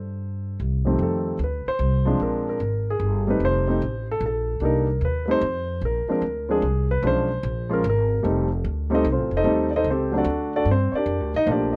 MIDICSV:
0, 0, Header, 1, 4, 480
1, 0, Start_track
1, 0, Tempo, 402414
1, 1187, Time_signature, 3, 2, 24, 8
1, 14027, End_track
2, 0, Start_track
2, 0, Title_t, "Grand piano"
2, 0, Program_c, 0, 0
2, 0, Note_on_c, 0, 69, 59
2, 0, Note_on_c, 0, 72, 74
2, 670, Note_off_c, 0, 72, 0
2, 682, Note_off_c, 0, 69, 0
2, 1014, Note_on_c, 0, 41, 57
2, 1019, Note_on_c, 0, 51, 55
2, 1023, Note_on_c, 0, 55, 61
2, 1034, Note_on_c, 0, 57, 61
2, 1036, Note_on_c, 0, 60, 66
2, 1224, Note_on_c, 0, 69, 70
2, 1629, Note_off_c, 0, 41, 0
2, 1631, Note_off_c, 0, 51, 0
2, 1633, Note_off_c, 0, 55, 0
2, 1638, Note_off_c, 0, 57, 0
2, 1640, Note_off_c, 0, 60, 0
2, 1653, Note_off_c, 0, 69, 0
2, 1715, Note_on_c, 0, 71, 62
2, 2001, Note_off_c, 0, 71, 0
2, 2005, Note_on_c, 0, 72, 94
2, 2449, Note_on_c, 0, 53, 69
2, 2457, Note_on_c, 0, 56, 66
2, 2460, Note_on_c, 0, 60, 60
2, 2471, Note_on_c, 0, 62, 74
2, 2591, Note_off_c, 0, 72, 0
2, 2655, Note_on_c, 0, 70, 66
2, 2950, Note_off_c, 0, 70, 0
2, 2973, Note_on_c, 0, 70, 72
2, 3065, Note_off_c, 0, 53, 0
2, 3069, Note_off_c, 0, 56, 0
2, 3071, Note_off_c, 0, 60, 0
2, 3076, Note_off_c, 0, 62, 0
2, 3464, Note_on_c, 0, 68, 78
2, 3556, Note_off_c, 0, 70, 0
2, 3892, Note_off_c, 0, 68, 0
2, 3903, Note_on_c, 0, 55, 65
2, 3913, Note_on_c, 0, 57, 59
2, 3916, Note_on_c, 0, 60, 57
2, 3926, Note_on_c, 0, 63, 66
2, 3940, Note_on_c, 0, 71, 75
2, 4078, Note_off_c, 0, 71, 0
2, 4113, Note_on_c, 0, 72, 93
2, 4362, Note_off_c, 0, 55, 0
2, 4366, Note_off_c, 0, 57, 0
2, 4371, Note_off_c, 0, 60, 0
2, 4380, Note_on_c, 0, 55, 62
2, 4382, Note_off_c, 0, 63, 0
2, 4384, Note_on_c, 0, 57, 59
2, 4388, Note_on_c, 0, 60, 59
2, 4399, Note_on_c, 0, 63, 70
2, 4527, Note_off_c, 0, 55, 0
2, 4529, Note_off_c, 0, 57, 0
2, 4531, Note_off_c, 0, 60, 0
2, 4536, Note_off_c, 0, 63, 0
2, 4840, Note_off_c, 0, 72, 0
2, 4907, Note_on_c, 0, 69, 90
2, 5042, Note_off_c, 0, 69, 0
2, 5080, Note_on_c, 0, 69, 78
2, 5502, Note_on_c, 0, 55, 57
2, 5508, Note_on_c, 0, 58, 52
2, 5513, Note_on_c, 0, 62, 57
2, 5528, Note_on_c, 0, 63, 67
2, 5546, Note_on_c, 0, 70, 75
2, 5790, Note_off_c, 0, 55, 0
2, 5794, Note_off_c, 0, 58, 0
2, 5796, Note_off_c, 0, 62, 0
2, 5803, Note_off_c, 0, 63, 0
2, 5803, Note_off_c, 0, 69, 0
2, 5973, Note_off_c, 0, 70, 0
2, 6020, Note_on_c, 0, 71, 76
2, 6251, Note_off_c, 0, 71, 0
2, 6269, Note_on_c, 0, 71, 62
2, 6292, Note_off_c, 0, 71, 0
2, 6292, Note_on_c, 0, 55, 63
2, 6299, Note_on_c, 0, 57, 58
2, 6304, Note_on_c, 0, 60, 53
2, 6309, Note_on_c, 0, 63, 68
2, 6336, Note_on_c, 0, 72, 99
2, 6443, Note_off_c, 0, 55, 0
2, 6446, Note_off_c, 0, 57, 0
2, 6449, Note_off_c, 0, 60, 0
2, 6451, Note_off_c, 0, 63, 0
2, 6917, Note_off_c, 0, 72, 0
2, 6980, Note_on_c, 0, 70, 76
2, 7257, Note_on_c, 0, 53, 60
2, 7262, Note_on_c, 0, 56, 53
2, 7266, Note_on_c, 0, 60, 55
2, 7270, Note_on_c, 0, 62, 66
2, 7272, Note_off_c, 0, 70, 0
2, 7296, Note_on_c, 0, 70, 80
2, 7406, Note_off_c, 0, 53, 0
2, 7408, Note_off_c, 0, 56, 0
2, 7410, Note_off_c, 0, 60, 0
2, 7412, Note_off_c, 0, 62, 0
2, 7737, Note_on_c, 0, 53, 60
2, 7743, Note_on_c, 0, 56, 61
2, 7749, Note_on_c, 0, 60, 53
2, 7760, Note_on_c, 0, 62, 70
2, 7768, Note_on_c, 0, 68, 82
2, 7878, Note_off_c, 0, 70, 0
2, 7886, Note_off_c, 0, 53, 0
2, 7888, Note_off_c, 0, 56, 0
2, 7892, Note_off_c, 0, 60, 0
2, 7897, Note_off_c, 0, 62, 0
2, 8204, Note_off_c, 0, 68, 0
2, 8244, Note_on_c, 0, 71, 84
2, 8380, Note_on_c, 0, 53, 64
2, 8391, Note_off_c, 0, 71, 0
2, 8392, Note_on_c, 0, 61, 58
2, 8396, Note_on_c, 0, 56, 60
2, 8409, Note_on_c, 0, 62, 72
2, 8434, Note_on_c, 0, 72, 95
2, 8670, Note_off_c, 0, 53, 0
2, 8676, Note_off_c, 0, 61, 0
2, 8678, Note_off_c, 0, 56, 0
2, 8685, Note_off_c, 0, 62, 0
2, 9162, Note_off_c, 0, 72, 0
2, 9178, Note_on_c, 0, 53, 70
2, 9180, Note_on_c, 0, 56, 62
2, 9192, Note_on_c, 0, 61, 63
2, 9195, Note_on_c, 0, 65, 70
2, 9225, Note_on_c, 0, 70, 81
2, 9327, Note_off_c, 0, 53, 0
2, 9328, Note_off_c, 0, 56, 0
2, 9334, Note_off_c, 0, 61, 0
2, 9335, Note_off_c, 0, 65, 0
2, 9362, Note_off_c, 0, 70, 0
2, 9416, Note_on_c, 0, 70, 85
2, 9812, Note_on_c, 0, 55, 64
2, 9822, Note_on_c, 0, 57, 62
2, 9828, Note_on_c, 0, 60, 58
2, 9831, Note_off_c, 0, 70, 0
2, 9834, Note_on_c, 0, 63, 64
2, 10107, Note_off_c, 0, 55, 0
2, 10112, Note_off_c, 0, 57, 0
2, 10115, Note_off_c, 0, 60, 0
2, 10118, Note_off_c, 0, 63, 0
2, 10614, Note_on_c, 0, 55, 71
2, 10625, Note_on_c, 0, 57, 65
2, 10629, Note_on_c, 0, 60, 68
2, 10637, Note_on_c, 0, 63, 76
2, 10662, Note_off_c, 0, 63, 0
2, 10672, Note_on_c, 0, 72, 72
2, 10672, Note_on_c, 0, 75, 89
2, 10680, Note_on_c, 0, 63, 73
2, 10684, Note_on_c, 0, 69, 70
2, 10766, Note_off_c, 0, 55, 0
2, 10771, Note_off_c, 0, 57, 0
2, 10773, Note_off_c, 0, 60, 0
2, 10807, Note_off_c, 0, 72, 0
2, 10807, Note_off_c, 0, 75, 0
2, 10810, Note_off_c, 0, 63, 0
2, 10813, Note_off_c, 0, 69, 0
2, 10879, Note_on_c, 0, 72, 61
2, 10884, Note_on_c, 0, 65, 51
2, 10886, Note_on_c, 0, 69, 53
2, 10888, Note_on_c, 0, 60, 50
2, 11145, Note_off_c, 0, 72, 0
2, 11148, Note_off_c, 0, 65, 0
2, 11149, Note_off_c, 0, 60, 0
2, 11149, Note_off_c, 0, 69, 0
2, 11174, Note_on_c, 0, 63, 68
2, 11175, Note_on_c, 0, 72, 72
2, 11177, Note_on_c, 0, 75, 91
2, 11181, Note_on_c, 0, 69, 71
2, 11256, Note_on_c, 0, 55, 69
2, 11263, Note_off_c, 0, 63, 0
2, 11267, Note_on_c, 0, 57, 68
2, 11271, Note_on_c, 0, 60, 64
2, 11281, Note_on_c, 0, 63, 73
2, 11550, Note_off_c, 0, 55, 0
2, 11555, Note_off_c, 0, 57, 0
2, 11558, Note_off_c, 0, 60, 0
2, 11563, Note_off_c, 0, 63, 0
2, 11579, Note_on_c, 0, 74, 67
2, 11591, Note_off_c, 0, 72, 0
2, 11592, Note_off_c, 0, 75, 0
2, 11594, Note_off_c, 0, 69, 0
2, 11597, Note_off_c, 0, 74, 0
2, 11642, Note_on_c, 0, 63, 72
2, 11644, Note_on_c, 0, 69, 71
2, 11644, Note_on_c, 0, 75, 93
2, 11649, Note_on_c, 0, 72, 73
2, 11773, Note_off_c, 0, 63, 0
2, 11773, Note_off_c, 0, 75, 0
2, 11774, Note_off_c, 0, 69, 0
2, 11776, Note_off_c, 0, 72, 0
2, 11814, Note_on_c, 0, 72, 77
2, 11817, Note_on_c, 0, 60, 61
2, 11824, Note_on_c, 0, 69, 68
2, 11826, Note_on_c, 0, 67, 59
2, 12065, Note_off_c, 0, 60, 0
2, 12067, Note_on_c, 0, 54, 65
2, 12074, Note_on_c, 0, 57, 59
2, 12082, Note_on_c, 0, 60, 61
2, 12084, Note_on_c, 0, 62, 71
2, 12093, Note_off_c, 0, 72, 0
2, 12098, Note_off_c, 0, 69, 0
2, 12099, Note_off_c, 0, 67, 0
2, 12119, Note_off_c, 0, 62, 0
2, 12137, Note_on_c, 0, 62, 65
2, 12140, Note_on_c, 0, 69, 66
2, 12141, Note_on_c, 0, 66, 70
2, 12142, Note_on_c, 0, 74, 79
2, 12213, Note_off_c, 0, 54, 0
2, 12217, Note_off_c, 0, 57, 0
2, 12221, Note_off_c, 0, 60, 0
2, 12552, Note_off_c, 0, 62, 0
2, 12554, Note_off_c, 0, 69, 0
2, 12555, Note_off_c, 0, 66, 0
2, 12555, Note_off_c, 0, 74, 0
2, 12595, Note_on_c, 0, 69, 69
2, 12597, Note_on_c, 0, 74, 92
2, 12599, Note_on_c, 0, 62, 65
2, 12601, Note_on_c, 0, 66, 71
2, 12730, Note_off_c, 0, 69, 0
2, 12731, Note_off_c, 0, 62, 0
2, 12731, Note_off_c, 0, 74, 0
2, 12732, Note_off_c, 0, 66, 0
2, 12770, Note_on_c, 0, 60, 67
2, 12779, Note_on_c, 0, 72, 87
2, 13024, Note_on_c, 0, 73, 59
2, 13041, Note_off_c, 0, 73, 0
2, 13052, Note_off_c, 0, 60, 0
2, 13056, Note_off_c, 0, 72, 0
2, 13066, Note_on_c, 0, 74, 82
2, 13078, Note_on_c, 0, 67, 65
2, 13078, Note_on_c, 0, 70, 64
2, 13090, Note_on_c, 0, 62, 69
2, 13497, Note_off_c, 0, 74, 0
2, 13503, Note_off_c, 0, 67, 0
2, 13503, Note_off_c, 0, 70, 0
2, 13509, Note_off_c, 0, 62, 0
2, 13554, Note_on_c, 0, 75, 104
2, 13564, Note_on_c, 0, 63, 82
2, 13664, Note_on_c, 0, 53, 61
2, 13667, Note_on_c, 0, 57, 51
2, 13680, Note_on_c, 0, 58, 59
2, 13686, Note_on_c, 0, 62, 70
2, 13690, Note_off_c, 0, 75, 0
2, 13695, Note_off_c, 0, 63, 0
2, 13708, Note_off_c, 0, 62, 0
2, 13726, Note_on_c, 0, 62, 65
2, 13732, Note_on_c, 0, 67, 66
2, 13735, Note_on_c, 0, 74, 77
2, 13742, Note_on_c, 0, 70, 67
2, 13991, Note_on_c, 0, 75, 67
2, 14007, Note_off_c, 0, 75, 0
2, 14010, Note_off_c, 0, 62, 0
2, 14013, Note_off_c, 0, 67, 0
2, 14015, Note_off_c, 0, 74, 0
2, 14019, Note_off_c, 0, 70, 0
2, 14027, Note_off_c, 0, 53, 0
2, 14027, Note_off_c, 0, 57, 0
2, 14027, Note_off_c, 0, 58, 0
2, 14027, End_track
3, 0, Start_track
3, 0, Title_t, "Upright bass"
3, 0, Program_c, 1, 32
3, 0, Note_on_c, 1, 43, 76
3, 657, Note_off_c, 1, 43, 0
3, 711, Note_on_c, 1, 36, 77
3, 1155, Note_off_c, 1, 36, 0
3, 1177, Note_on_c, 1, 41, 79
3, 1647, Note_off_c, 1, 41, 0
3, 1657, Note_on_c, 1, 38, 79
3, 1958, Note_off_c, 1, 38, 0
3, 2135, Note_on_c, 1, 36, 87
3, 2605, Note_off_c, 1, 36, 0
3, 2619, Note_on_c, 1, 34, 76
3, 3088, Note_off_c, 1, 34, 0
3, 3100, Note_on_c, 1, 32, 84
3, 3568, Note_off_c, 1, 32, 0
3, 3573, Note_on_c, 1, 31, 84
3, 4044, Note_off_c, 1, 31, 0
3, 4056, Note_on_c, 1, 29, 77
3, 4526, Note_off_c, 1, 29, 0
3, 4553, Note_on_c, 1, 33, 87
3, 5008, Note_off_c, 1, 33, 0
3, 5015, Note_on_c, 1, 34, 94
3, 5480, Note_off_c, 1, 34, 0
3, 5487, Note_on_c, 1, 36, 74
3, 5961, Note_off_c, 1, 36, 0
3, 5975, Note_on_c, 1, 39, 80
3, 6445, Note_off_c, 1, 39, 0
3, 6456, Note_on_c, 1, 41, 93
3, 6926, Note_off_c, 1, 41, 0
3, 6935, Note_on_c, 1, 34, 85
3, 7236, Note_off_c, 1, 34, 0
3, 7413, Note_on_c, 1, 38, 80
3, 7885, Note_off_c, 1, 38, 0
3, 7896, Note_on_c, 1, 36, 86
3, 8367, Note_off_c, 1, 36, 0
3, 8379, Note_on_c, 1, 35, 81
3, 8848, Note_off_c, 1, 35, 0
3, 8865, Note_on_c, 1, 34, 91
3, 9332, Note_off_c, 1, 34, 0
3, 9353, Note_on_c, 1, 32, 97
3, 9816, Note_off_c, 1, 32, 0
3, 9834, Note_on_c, 1, 29, 82
3, 10297, Note_off_c, 1, 29, 0
3, 10311, Note_on_c, 1, 38, 91
3, 10776, Note_off_c, 1, 38, 0
3, 10788, Note_on_c, 1, 36, 90
3, 10950, Note_off_c, 1, 36, 0
3, 10950, Note_on_c, 1, 33, 58
3, 11099, Note_off_c, 1, 33, 0
3, 11106, Note_on_c, 1, 29, 72
3, 11253, Note_off_c, 1, 29, 0
3, 11260, Note_on_c, 1, 39, 75
3, 11730, Note_off_c, 1, 39, 0
3, 11739, Note_on_c, 1, 37, 83
3, 12211, Note_off_c, 1, 37, 0
3, 12219, Note_on_c, 1, 38, 93
3, 12691, Note_off_c, 1, 38, 0
3, 12707, Note_on_c, 1, 43, 86
3, 13006, Note_off_c, 1, 43, 0
3, 13190, Note_on_c, 1, 41, 85
3, 13359, Note_off_c, 1, 41, 0
3, 13359, Note_on_c, 1, 38, 56
3, 13516, Note_off_c, 1, 38, 0
3, 13528, Note_on_c, 1, 34, 71
3, 13670, Note_off_c, 1, 34, 0
3, 13677, Note_on_c, 1, 34, 96
3, 14027, Note_off_c, 1, 34, 0
3, 14027, End_track
4, 0, Start_track
4, 0, Title_t, "Muted upright bass strokes"
4, 1982, Note_on_c, 9, 29, 38
4, 2101, Note_off_c, 9, 29, 0
4, 7245, Note_on_c, 9, 29, 34
4, 7365, Note_off_c, 9, 29, 0
4, 13034, Note_on_c, 9, 29, 38
4, 13153, Note_off_c, 9, 29, 0
4, 14027, End_track
0, 0, End_of_file